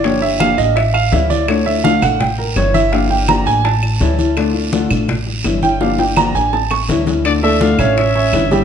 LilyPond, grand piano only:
\new Staff \with { instrumentName = "Grand piano" } { \time 4/4 \key d \minor \tempo 4 = 166 cis''8 e''8 f''8 ees''8 e''8 f''8 e''8 d''8 | cis''8 e''8 f''8 fis''8 g''8 bes'8 cis''8 e''8 | f''8 g''8 bes''8 gis''8 a''2~ | a''4 r2 r8 g''8 |
f''8 g''8 bes''8 gis''8 a''8 cis'''8 r4 | r8 <a a' d''>4 <cis' cis'' e''>4 <cis' cis'' e''>4 <g g' g''>8 | }